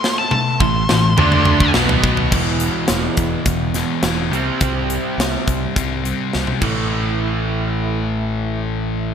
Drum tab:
CC |----------------|x---------------|--------------x-|----------------|
HH |----------------|--x-x-x-x-x-x-x-|x-x-x-x-x-x-----|----------------|
SD |o-----o-----o---|----o-----o-o---|----o-------o---|----------------|
T1 |--o-------------|----------------|-------------o--|----------------|
T2 |--------ooo-----|----------------|----------------|----------------|
FT |-------------o-o|----------------|----------------|----------------|
BD |----o------o--o-|o-----o-o-------|o-----o-o-----o-|----------------|